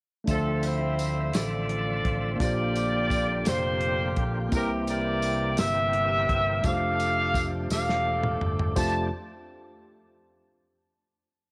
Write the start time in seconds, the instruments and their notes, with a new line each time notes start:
0.24 fingered electric bass D2, tine electric piano D3 A3 D4 E5, kick, closed hi-hat
0.28 tonewheel organ D3 F3 C4 E5, tine electric piano F3 C5, horn section C4 F4 A4, tambourine
0.63 horn section E4 F4 C5, closed hi-hat, tambourine
0.99 closed hi-hat, tambourine
1.33 fingered electric bass A1, horn section F4 A4 D5, snare, closed hi-hat, tambourine
1.69 closed hi-hat
2.05 fingered electric bass A1, kick, closed hi-hat
2.36 fingered electric bass A#1, tine electric piano A#2 A#3 D4 F4, tonewheel organ A#3 G4, kick, closed hi-hat
2.41 horn section F4 G4 D5, tine electric piano G4 C5, tambourine
2.75 closed hi-hat, tambourine
3.10 kick, closed hi-hat, tambourine
3.45 fingered electric bass F1, horn section F4 G4 C5, snare, closed hi-hat, tambourine
3.81 closed hi-hat
4.17 fingered electric bass A#1, kick, closed hi-hat
4.49 fingered electric bass C2, tonewheel organ E3 A#3, tine electric piano A#3 C4, kick, closed hi-hat, tambourine
4.53 tine electric piano C3 E4 G4 C5, horn section E4 G4 A#4
4.87 horn section G4 A#4 D5, closed hi-hat, tambourine
5.22 closed hi-hat, tambourine
5.57 fingered electric bass G1, horn section G4 A#4 E5, snare, closed hi-hat, tambourine
5.93 closed hi-hat
6.29 fingered electric bass G1, kick, closed hi-hat
6.61 fingered electric bass F1, tonewheel organ F3 A3 D4, tine electric piano G3 D4 F4, kick, closed hi-hat
6.65 tine electric piano A3 G4 C5, horn section A4 D5 F5, tambourine
7.00 closed hi-hat, tambourine
7.34 kick, closed hi-hat, tambourine
7.70 fingered electric bass E1, horn section A4 D5 F5, snare, tambourine
7.89 snare
8.23 mid tom
8.41 fingered electric bass G1, floor tom
8.59 floor tom
8.76 fingered electric bass F1, tine electric piano F2 A3 D4 F4 G4 C5, tonewheel organ F3 A3 D4 G4, horn section A5, kick, crash, tambourine